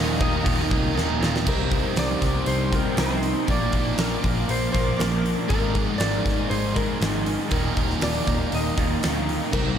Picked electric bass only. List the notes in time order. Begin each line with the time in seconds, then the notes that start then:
Already playing: D#1
0.21 D#1
0.46 D#1
0.72 C2
0.96 D#1
1.21 D#1
1.48 C2
1.96 C2
2.22 C2
2.46 C2
2.97 C2
3.49 A#1
3.74 A#1
3.98 A#1
4.25 A#1
4.49 A#1
4.75 A#1
4.99 A#1
5.50 G#1
6.00 G#1
6.26 G#1
6.51 G#1
7.01 G#1
7.52 D#1
7.77 D#1
8.03 D#1
8.28 D#1
8.53 D#1
8.78 D#1
9.04 D2
9.53 C2